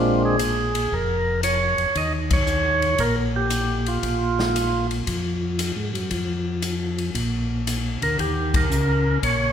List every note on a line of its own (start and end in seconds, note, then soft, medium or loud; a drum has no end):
0.00 0.88 A#1 medium
0.00 0.36 A#2 soft
0.00 0.37 G#3 soft
0.00 0.37 C4 soft
0.00 0.37 D4 soft
0.00 0.23 F4 medium
0.25 0.95 G#4 medium
0.39 hi-hat pedal soft
0.39 ride medium
0.75 ride medium
0.92 1.75 F1 medium
0.92 1.41 A#4 medium
0.92 kick soft
1.43 1.97 C#5 medium
1.43 hi-hat pedal medium
1.43 ride medium
1.78 1.86 F1 soft
1.78 ride soft
1.95 2.95 D#2 medium
1.95 2.13 D#5 medium
1.95 kick soft
1.95 ride soft
2.31 3.03 C#5 medium
2.31 kick medium
2.31 ride medium
2.47 hi-hat pedal soft
2.82 ride soft
2.98 3.99 A#1 medium
2.98 3.16 A#4 medium
2.98 kick soft
2.98 ride medium
3.36 3.89 G4 medium
3.50 hi-hat pedal medium
3.50 ride medium
3.86 4.87 F4 medium
3.86 ride soft
4.03 5.03 A#1 medium
4.03 kick soft
4.03 ride soft
4.39 snare soft
4.56 hi-hat pedal medium
4.56 ride medium
4.91 ride soft
5.07 5.72 F2 medium
5.07 kick soft
5.07 ride medium
5.59 hi-hat pedal medium
5.59 ride medium
5.76 5.92 G#2 medium
5.94 6.10 F#2 medium
5.94 ride soft
6.11 7.11 F2 medium
6.11 kick soft
6.11 ride soft
6.62 hi-hat pedal medium
6.62 ride medium
6.98 ride soft
7.15 7.98 A#1 medium
7.15 kick soft
7.15 ride medium
7.67 hi-hat pedal medium
7.67 ride medium
8.02 8.17 D2 medium
8.02 8.18 A#4 medium
8.02 ride soft
8.18 8.67 D#2 medium
8.18 8.56 G4 medium
8.18 kick soft
8.18 ride soft
8.54 9.20 A#4 medium
8.54 kick medium
8.54 ride medium
8.70 9.18 C#2 medium
8.70 hi-hat pedal medium
9.23 9.53 A#1 medium
9.23 9.53 C#5 medium
9.23 kick soft
9.23 ride medium